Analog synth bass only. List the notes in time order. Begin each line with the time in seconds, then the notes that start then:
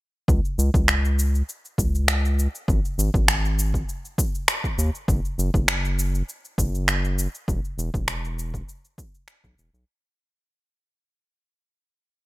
0.28 C#2
0.58 C#2
0.74 C#2
1.78 C#2
2.68 G#1
2.98 G#1
3.14 G#1
4.78 D#2
5.08 F#1
5.38 F#1
5.54 F#1
6.58 F#1
7.48 E1
7.78 E1
7.94 E1
9.44 B1
9.58 E1
9.74 B1